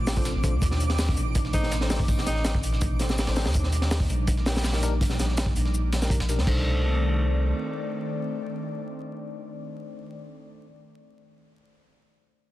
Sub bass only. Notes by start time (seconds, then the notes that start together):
Already playing: A1
0.35 A1
0.53 D2
0.62 D#2
1.17 A1
2.27 A1
2.63 A1
3.28 A1
3.46 D#2
3.55 D#2
4.09 A#1
5.19 A#1
5.56 A#1
6.20 A#1
6.38 D#2
6.47 C2